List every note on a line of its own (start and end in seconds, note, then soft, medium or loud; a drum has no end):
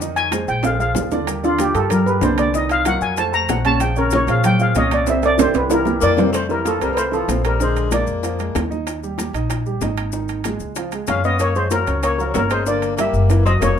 0.00 0.43 F2 medium
0.00 0.27 D#3 medium
0.00 0.27 D#4 medium
0.00 0.27 D#5 medium
0.00 high bongo medium
0.00 high conga soft
0.00 maracas medium
0.16 0.46 G#5 loud
0.16 high bongo soft
0.16 high conga soft
0.16 high timbale medium
0.16 maracas soft
0.31 0.58 G#3 medium
0.31 0.58 G#4 medium
0.31 0.58 C5 medium
0.31 high bongo medium
0.31 high conga medium
0.31 high timbale loud
0.31 maracas medium
0.48 0.92 A#1 medium
0.48 0.64 G5 medium
0.48 high bongo soft
0.48 high conga soft
0.48 maracas soft
0.63 0.77 F3 medium
0.63 0.77 F4 medium
0.63 0.77 G#4 medium
0.63 0.79 F5 medium
0.63 high bongo medium
0.63 high timbale medium
0.63 maracas medium
0.79 1.06 F3 medium
0.79 1.06 F4 medium
0.79 1.06 G#4 medium
0.79 0.90 F5 medium
0.79 high conga soft
0.79 maracas soft
0.95 1.70 D#2 medium
0.95 high bongo medium
0.95 low bongo medium
0.95 high conga medium
0.95 low timbale medium
0.95 maracas medium
1.11 1.25 D3 medium
1.11 1.25 D4 medium
1.11 1.25 D5 medium
1.11 high bongo soft
1.11 high conga medium
1.11 low timbale medium
1.11 maracas soft
1.27 1.40 G3 medium
1.27 1.40 G4 medium
1.27 1.41 A#4 medium
1.27 high bongo medium
1.27 high conga soft
1.27 high timbale medium
1.27 maracas medium
1.43 1.69 D3 medium
1.43 1.70 D4 medium
1.43 1.59 F4 medium
1.43 1.70 D5 medium
1.43 high conga soft
1.43 maracas soft
1.59 1.75 G4 medium
1.59 high bongo medium
1.59 high conga medium
1.59 high timbale medium
1.59 maracas medium
1.74 2.19 G2 medium
1.74 2.01 G3 medium
1.74 2.01 G4 medium
1.74 1.90 A4 medium
1.74 2.01 A#4 medium
1.74 high conga soft
1.74 high timbale medium
1.74 maracas soft
1.90 2.06 A#4 medium
1.90 high bongo medium
1.90 high conga soft
1.90 low conga medium
1.90 high timbale medium
1.90 maracas medium
2.06 2.20 G3 medium
2.06 2.21 G4 medium
2.06 2.21 A#4 medium
2.06 2.22 B4 medium
2.06 maracas soft
2.21 2.96 C2 loud
2.21 2.49 D3 medium
2.21 2.49 D4 medium
2.21 2.38 C5 medium
2.21 2.50 D5 medium
2.21 high bongo medium
2.21 low bongo medium
2.21 high conga medium
2.21 high timbale medium
2.21 maracas medium
2.38 2.54 D5 loud
2.38 high conga medium
2.38 high timbale loud
2.38 maracas soft
2.54 2.81 D#3 medium
2.54 2.81 D#4 medium
2.54 2.81 D#5 medium
2.54 2.70 D#5 medium
2.54 high bongo medium
2.54 high conga soft
2.54 maracas medium
2.69 2.86 F5 loud
2.69 high bongo soft
2.69 high conga soft
2.69 high timbale medium
2.69 maracas soft
2.85 3.13 F#3 medium
2.85 3.13 F#4 medium
2.85 3.13 A#4 medium
2.85 3.02 F#5 medium
2.85 high bongo medium
2.85 high conga medium
2.85 high timbale loud
2.85 maracas medium
3.01 3.45 F2 medium
3.01 3.17 G#5 medium
3.01 high bongo soft
3.01 high conga soft
3.01 maracas soft
3.17 3.30 A3 medium
3.17 3.30 A4 medium
3.17 3.30 C5 medium
3.17 3.33 A5 loud
3.17 high bongo medium
3.17 high conga soft
3.17 high timbale medium
3.17 maracas medium
3.32 3.59 A3 medium
3.32 3.59 A4 medium
3.32 3.59 C5 medium
3.32 3.49 A#5 loud
3.32 high conga soft
3.32 maracas soft
3.48 4.22 A#1 loud
3.48 3.65 F#5 medium
3.48 high bongo medium
3.48 low bongo medium
3.48 high conga medium
3.48 high timbale medium
3.48 maracas medium
3.65 3.78 C#3 medium
3.65 3.78 C#4 medium
3.65 3.78 C#5 medium
3.65 3.81 A5 loud
3.65 high bongo soft
3.65 high conga medium
3.65 high timbale medium
3.65 maracas soft
3.80 3.94 F3 medium
3.80 3.94 F4 medium
3.80 3.94 G#4 medium
3.80 3.96 G5 medium
3.80 high bongo medium
3.80 high timbale medium
3.80 maracas medium
3.96 4.23 C#3 medium
3.96 4.23 C#4 medium
3.96 4.13 A#4 medium
3.96 4.23 C#5 medium
3.96 high conga soft
3.96 maracas soft
4.11 high bongo medium
4.11 high conga loud
4.11 high timbale medium
4.11 maracas medium
4.15 4.29 C#5 medium
4.27 4.72 A#2 medium
4.27 4.54 F3 medium
4.27 4.54 F4 medium
4.27 4.54 G#4 medium
4.27 4.45 F5 medium
4.27 high timbale medium
4.27 maracas soft
4.44 4.60 G5 loud
4.44 high bongo medium
4.44 high conga soft
4.44 low conga medium
4.44 high timbale medium
4.44 maracas medium
4.59 4.73 F3 medium
4.59 4.73 F4 medium
4.59 4.73 G#4 medium
4.59 4.76 F5 medium
4.59 maracas soft
4.75 5.49 C2 loud
4.75 5.02 A#2 medium
4.75 5.02 C#4 medium
4.75 5.02 C#5 medium
4.75 4.92 D#5 medium
4.75 high bongo medium
4.75 low bongo medium
4.75 high conga medium
4.75 high timbale medium
4.75 maracas medium
4.91 5.08 D5 medium
4.91 high conga medium
4.91 high timbale loud
4.91 maracas soft
5.07 5.33 C3 medium
5.07 5.33 C4 medium
5.07 5.34 C5 medium
5.07 5.24 E5 medium
5.07 high bongo medium
5.07 high timbale medium
5.07 maracas medium
5.23 5.40 D5 loud
5.23 high bongo soft
5.23 high conga soft
5.23 high timbale medium
5.23 maracas soft
5.38 5.65 E3 medium
5.38 5.65 E4 medium
5.38 5.65 G4 medium
5.38 5.55 C5 medium
5.38 high bongo medium
5.38 high conga medium
5.38 high timbale loud
5.38 maracas medium
5.54 5.99 C2 loud
5.54 5.71 B4 medium
5.54 high bongo soft
5.54 high timbale medium
5.54 maracas soft
5.70 5.84 E3 medium
5.70 5.84 E4 medium
5.70 5.85 G4 medium
5.70 6.23 A#4 medium
5.70 high bongo medium
5.70 high conga soft
5.70 low timbale medium
5.70 maracas medium
5.85 6.12 E3 medium
5.85 6.12 E4 medium
5.85 6.12 G4 medium
5.85 high bongo medium
5.85 high conga loud
5.85 maracas soft
6.01 6.76 F2 loud
6.01 6.31 A#3 medium
6.01 6.35 D5 loud
6.01 low timbale medium
6.01 maracas medium
6.17 6.31 C3 medium
6.17 6.31 C4 medium
6.17 6.32 C5 medium
6.17 low bongo medium
6.17 low conga medium
6.17 low timbale loud
6.17 maracas soft
6.32 6.48 A3 medium
6.32 6.49 C5 medium
6.32 high bongo medium
6.32 high conga soft
6.32 high timbale medium
6.32 maracas medium
6.49 6.75 E3 medium
6.49 6.64 G3 medium
6.49 6.75 E4 medium
6.49 6.67 A#4 medium
6.49 high conga soft
6.49 maracas soft
6.65 6.80 F3 medium
6.65 6.83 A4 medium
6.65 high bongo medium
6.65 high conga medium
6.65 high timbale medium
6.65 maracas medium
6.80 7.25 C2 medium
6.80 6.93 G3 medium
6.80 7.07 C4 medium
6.80 6.94 A#4 medium
6.80 7.07 C5 medium
6.80 high conga soft
6.80 high timbale medium
6.80 maracas soft
6.93 6.97 G3 medium
6.93 6.97 B4 medium
6.93 7.04 C5 medium
6.93 high bongo medium
6.97 7.05 A3 medium
6.97 high conga soft
6.97 high timbale medium
6.97 maracas medium
7.12 7.25 E3 medium
7.12 7.43 F3 medium
7.12 7.25 E4 medium
7.12 7.46 A4 medium
7.12 high conga soft
7.12 maracas soft
7.28 8.02 A#1 medium
7.28 7.55 C4 medium
7.28 7.55 C5 medium
7.28 high bongo medium
7.28 low bongo medium
7.28 high conga medium
7.28 high timbale medium
7.28 maracas medium
7.44 7.59 G3 medium
7.44 7.62 A#4 medium
7.44 high conga soft
7.44 high timbale medium
7.44 maracas soft
7.60 7.86 D3 medium
7.60 7.90 G#3 medium
7.60 7.86 D4 medium
7.60 7.91 C5 medium
7.60 high bongo medium
7.60 maracas medium
7.76 high conga soft
7.76 high timbale medium
7.76 maracas soft
7.91 8.17 G#3 medium
7.91 8.68 A#3 medium
7.91 8.18 G#4 medium
7.91 8.68 D5 medium
7.91 high bongo medium
7.91 high conga medium
7.91 high timbale medium
7.91 maracas medium
8.07 8.52 F2 medium
8.07 high conga soft
8.07 maracas soft
8.23 8.37 F3 medium
8.23 8.37 F4 medium
8.23 high bongo medium
8.23 high conga soft
8.23 high timbale medium
8.23 maracas medium
8.38 8.65 G#3 medium
8.38 8.65 G#4 medium
8.38 high bongo soft
8.38 high conga soft
8.38 high timbale medium
8.38 maracas soft
8.55 9.29 D#2 medium
8.55 high bongo medium
8.55 low bongo medium
8.55 high conga medium
8.55 high timbale loud
8.55 low timbale medium
8.55 maracas medium
8.70 8.97 D#4 medium
8.70 8.97 D#5 medium
8.70 high bongo soft
8.70 high conga medium
8.70 maracas soft
8.87 high bongo medium
8.87 high timbale medium
8.87 maracas medium
9.03 9.29 G3 medium
9.03 9.29 G4 medium
9.03 high conga soft
9.03 maracas soft
9.18 high bongo medium
9.18 high conga medium
9.18 high timbale medium
9.18 maracas medium
9.33 9.78 A#1 medium
9.33 9.60 D#4 medium
9.33 9.61 D#5 medium
9.33 high conga soft
9.33 high timbale medium
9.33 maracas soft
9.50 high bongo medium
9.50 high conga soft
9.50 high timbale medium
9.50 maracas medium
9.66 9.79 G3 medium
9.66 9.79 G4 medium
9.66 high conga soft
9.66 maracas soft
9.80 10.55 G#1 medium
9.80 10.08 D#4 medium
9.80 10.09 D#5 medium
9.80 high bongo medium
9.80 low bongo medium
9.80 high conga medium
9.80 high timbale medium
9.80 maracas medium
9.97 high conga soft
9.97 high timbale medium
9.97 maracas soft
10.12 10.39 D#3 medium
10.12 10.39 D#4 medium
10.12 high bongo medium
10.12 high conga soft
10.12 maracas medium
10.29 high conga soft
10.29 high timbale medium
10.29 maracas soft
10.44 10.72 G#3 medium
10.44 10.72 G#4 medium
10.44 high bongo medium
10.44 high conga medium
10.44 high timbale medium
10.44 maracas medium
10.60 11.05 C#2 medium
10.60 high bongo soft
10.60 high conga soft
10.60 maracas soft
10.76 10.90 F3 medium
10.76 10.91 F4 medium
10.76 high bongo medium
10.76 high conga soft
10.76 high timbale medium
10.76 maracas medium
10.91 11.19 G#3 medium
10.91 11.19 G#4 medium
10.91 high bongo soft
10.91 high conga soft
10.91 high timbale medium
10.91 maracas soft
11.07 11.82 F#2 medium
11.07 11.24 C#4 medium
11.07 11.25 F5 medium
11.07 high bongo medium
11.07 low bongo medium
11.07 high conga medium
11.07 high timbale medium
11.07 maracas medium
11.24 11.39 B3 medium
11.24 11.50 C#4 medium
11.24 11.51 C#5 medium
11.24 11.40 D#5 medium
11.24 high bongo soft
11.24 high conga medium
11.24 maracas soft
11.39 11.55 A#3 medium
11.39 11.56 C#5 medium
11.39 high bongo medium
11.39 high conga soft
11.39 high timbale medium
11.39 maracas medium
11.55 11.82 F3 medium
11.55 11.70 G#3 medium
11.55 11.82 F4 medium
11.55 11.73 C5 medium
11.55 high conga soft
11.55 maracas soft
11.71 12.01 F#3 medium
11.71 12.01 A#4 medium
11.71 high bongo medium
11.71 high conga medium
11.71 high timbale medium
11.71 maracas medium
11.87 12.32 C#2 medium
11.87 12.13 C#4 medium
11.87 12.14 C#5 medium
11.87 high conga soft
11.87 high timbale medium
11.87 maracas soft
12.03 12.18 A#3 medium
12.03 12.19 C#5 medium
12.03 high bongo medium
12.03 high conga soft
12.03 high timbale medium
12.03 maracas medium
12.18 12.33 F3 medium
12.18 12.33 F#3 medium
12.18 12.33 F4 medium
12.18 12.34 A#4 medium
12.18 high conga soft
12.18 maracas soft
12.34 13.09 G1 medium
12.34 12.41 F#3 medium
12.34 12.62 C#4 medium
12.34 12.43 A#4 medium
12.34 12.62 C#5 medium
12.34 high bongo medium
12.34 low bongo medium
12.34 high conga medium
12.34 high timbale medium
12.34 low timbale medium
12.34 maracas medium
12.50 12.65 G#3 medium
12.50 12.68 C5 medium
12.50 high conga soft
12.50 high timbale medium
12.50 maracas soft
12.66 12.93 D3 medium
12.66 12.96 A#3 medium
12.66 12.93 D4 medium
12.66 13.00 D5 medium
12.66 high bongo medium
12.66 high conga soft
12.66 maracas medium
12.82 high conga soft
12.82 high timbale medium
12.82 maracas soft
12.97 13.24 G3 medium
12.97 13.42 A#3 medium
12.97 13.25 G4 medium
12.97 13.44 E5 medium
12.97 high bongo medium
12.97 high conga medium
12.97 high timbale loud
12.97 maracas medium
13.13 13.58 F#1 medium
13.13 high bongo soft
13.13 high conga soft
13.13 maracas soft
13.30 13.43 E3 medium
13.30 13.43 E4 medium
13.30 high bongo medium
13.30 high conga soft
13.30 high timbale medium
13.30 maracas medium
13.45 13.71 F#3 medium
13.45 13.53 C4 medium
13.45 13.72 F#4 medium
13.45 13.54 D#5 medium
13.45 high bongo soft
13.45 high conga soft
13.45 high timbale medium
13.45 maracas soft
13.60 13.79 F1 medium
13.60 13.79 A#3 medium
13.60 13.79 C#5 medium
13.60 high bongo medium
13.60 low bongo medium
13.60 high conga medium
13.60 high timbale loud
13.60 low timbale medium
13.60 maracas medium